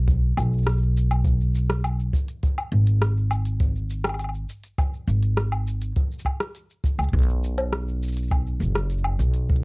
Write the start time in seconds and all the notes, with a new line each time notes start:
Already playing: B1
0.08 kick, closed hi-hat, shaker
0.37 B1, low woodblock, shaker
0.53 shaker
0.58 shaker
0.62 cross-stick, closed hi-hat, shaker
0.67 shaker
0.72 shaker
0.77 shaker
0.82 shaker
0.97 shaker
1.11 closed hi-hat, low woodblock, shaker
1.25 kick, closed hi-hat, shaker
1.41 shaker
1.55 shaker
1.70 cross-stick, closed hi-hat, shaker
1.84 closed hi-hat, low woodblock, shaker
2.00 shaker
2.13 kick, shaker
2.28 closed hi-hat, shaker
2.43 kick, closed hi-hat, shaker
2.58 low woodblock, shaker
2.72 G#1
2.87 closed hi-hat, shaker
3.02 cross-stick, closed hi-hat, shaker
3.17 shaker
3.31 low woodblock, shaker
3.46 closed hi-hat, shaker
3.60 kick, closed hi-hat, shaker
3.76 shaker
3.90 shaker
4.04 cross-stick, closed hi-hat, low woodblock, shaker
4.09 low woodblock
4.14 low woodblock
4.19 closed hi-hat, low woodblock, shaker
4.24 low woodblock
4.29 low woodblock
4.35 shaker
4.49 shaker
4.64 closed hi-hat, shaker
4.78 kick, closed hi-hat, low woodblock, shaker
4.94 shaker
5.08 G#1, shaker
5.23 closed hi-hat, shaker
5.37 cross-stick, closed hi-hat, shaker
5.52 low woodblock, shaker
5.67 shaker
5.82 closed hi-hat, shaker
5.96 kick, closed hi-hat, shaker
6.12 shaker
6.19 shaker
6.25 kick, low woodblock
6.40 cross-stick, closed hi-hat, shaker
6.55 closed hi-hat, shaker
6.70 shaker
6.84 kick, shaker
6.99 C#2, closed hi-hat, low woodblock, shaker
7.04 closed hi-hat
7.09 closed hi-hat
7.13 B1, kick, closed hi-hat
7.19 closed hi-hat, shaker
7.23 closed hi-hat
7.29 shaker
7.44 shaker
7.58 closed hi-hat, low woodblock, shaker
7.72 cross-stick, closed hi-hat, shaker
7.88 shaker
8.03 shaker
8.08 shaker
8.12 shaker
8.17 closed hi-hat, shaker
8.23 shaker
8.27 kick, closed hi-hat, low woodblock, shaker
8.32 shaker
8.47 shaker
8.60 F#1, shaker
8.75 cross-stick, closed hi-hat, shaker
8.90 closed hi-hat, shaker
8.98 shaker
9.04 low woodblock
9.19 B1, shaker
9.34 closed hi-hat, shaker
9.49 kick, shaker
9.56 closed hi-hat